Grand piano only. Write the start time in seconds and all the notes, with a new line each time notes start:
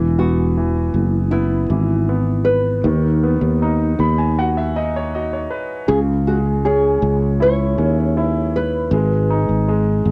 Already playing: E3
0.19 B3
0.57 E3
1.32 B3
1.70 E3
2.09 B3
2.86 D#3
3.24 B3
3.62 D#4
4.00 B5
4.18 G#5
4.38 F#4 F#5
4.57 E5
4.76 D#4 D#5
4.96 C#5
5.15 F#4 D#5
5.33 C#5
5.50 B4
5.89 C#3
6.27 G#3
6.65 C#4
7.40 E4
7.78 C#4
8.17 E4
8.93 G#3
9.30 D#4
9.68 G#3